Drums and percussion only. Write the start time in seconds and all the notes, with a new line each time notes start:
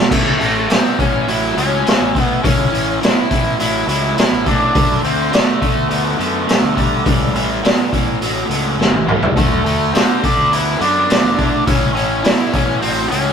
0.11 kick, crash
0.41 open hi-hat
0.70 snare, open hi-hat
0.99 kick, open hi-hat
1.28 open hi-hat
1.58 open hi-hat
1.87 snare, open hi-hat
2.15 kick, open hi-hat
2.44 kick, open hi-hat
2.74 open hi-hat
3.03 snare, open hi-hat
3.31 kick, open hi-hat
3.60 open hi-hat
3.89 open hi-hat
4.18 snare, open hi-hat
4.46 kick, open hi-hat
4.75 kick, open hi-hat
5.04 open hi-hat
5.33 snare, open hi-hat
5.62 kick, open hi-hat
5.91 open hi-hat
6.20 open hi-hat
6.49 snare, open hi-hat
6.77 kick, open hi-hat
7.06 kick, open hi-hat
7.35 open hi-hat
7.65 snare, open hi-hat
7.93 kick, open hi-hat
8.22 open hi-hat
8.51 open hi-hat
8.81 snare
8.94 high tom
9.08 mid tom
9.23 floor tom
9.37 kick, open hi-hat
9.66 open hi-hat
9.95 snare, open hi-hat
10.24 kick, open hi-hat
10.53 open hi-hat
10.81 open hi-hat
11.10 snare, open hi-hat
11.38 kick, open hi-hat
11.67 kick, open hi-hat
11.96 open hi-hat
12.24 snare, open hi-hat
12.53 kick, open hi-hat
12.82 open hi-hat
13.12 open hi-hat